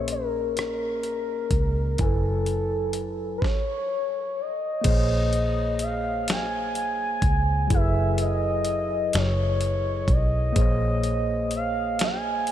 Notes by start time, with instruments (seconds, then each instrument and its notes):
Already playing: fingered electric bass A#1, tine electric piano A#3 C#4 G#4 A#4 D#5, soft synth lead C#5
0.08 closed hi-hat
0.12 soft synth lead A#4
0.57 soft synth lead A#4, cross-stick, closed hi-hat
1.03 closed hi-hat
1.51 fingered electric bass C#2, kick, closed hi-hat
1.98 fingered electric bass F#1, tine electric piano F#3 E4 A4 G#5, kick, closed hi-hat
2.03 soft synth lead A4, tine electric piano B4
2.46 closed hi-hat
2.93 closed hi-hat
3.38 soft synth lead C5
3.42 soft synth lead C#5, kick, snare
4.41 soft synth lead D#5
4.81 tine electric piano A#3 G#4, kick, closed hi-hat, crash
4.86 fingered electric bass A#1, tine electric piano C5 C#5
4.90 tine electric piano D#5
5.33 closed hi-hat
5.79 soft synth lead F5, closed hi-hat
6.28 soft synth lead G#5, snare, closed hi-hat
6.75 closed hi-hat
7.22 fingered electric bass C#2, kick, closed hi-hat
7.67 fingered electric bass F#1, tine electric piano F#3 E4, kick, closed hi-hat
7.72 tine electric piano G#4 A4, soft synth lead E5
7.76 tine electric piano B4
8.18 soft synth lead D#5, closed hi-hat
8.65 closed hi-hat
9.13 fingered electric bass F#1, soft synth lead C#5, snare, closed hi-hat
9.61 closed hi-hat
10.08 fingered electric bass B1, kick, closed hi-hat
10.12 soft synth lead D#5
10.53 tine electric piano A#3 G#4, kick, closed hi-hat
10.57 fingered electric bass A#1, tine electric piano C5 C#5
10.61 tine electric piano D#5
11.04 closed hi-hat
11.51 closed hi-hat
11.56 soft synth lead F5
11.99 snare, closed hi-hat
12.04 soft synth lead G#5
12.47 closed hi-hat